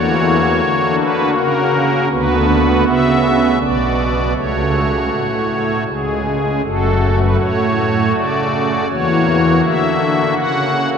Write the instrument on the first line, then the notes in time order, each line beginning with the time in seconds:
pipe organ
Already playing: E2 E3 A#3 F#4 C#5
0.63 D3
0.99 B4
1.36 C#3 A#4
2.10 D2 D3 B3 F#4 B4
2.87 C#3 E5
3.60 B1 B2 B3 F#4 D5
4.35 C#2 C#3 A3 F#4 C#5
5.11 A2
5.87 C#2 C#3 G#3 G#4
6.63 F#1 F#2 A3 F#4 A4
7.20 B4
7.39 A2 C#5
8.15 C#3 D5
8.90 E2 E3 A#3 F#4 C#5
9.64 D3 E5
10.37 C#3 F#5
10.92 D5